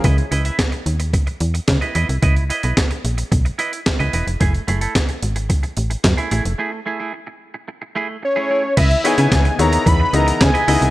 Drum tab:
CC |----------------|----------------|----------------|----------------|
HH |xxxxxxxxxxxxxxxx|xxxxxxxxxxxxxxxx|xxxxxxxxxxxxxxxx|----------------|
CP |----x-------x---|----x-------x---|----x-------x---|----------------|
SD |----o-------o---|----o-------o---|----o-------o---|----------------|
BD |o---o---o---o---|o---o---o---o---|o---o---o---o---|----------------|

CC |x---------------|
HH |xxxxxxxxx-xxxxox|
CP |----x-------x---|
SD |----o-------o---|
BD |o---o---o---o---|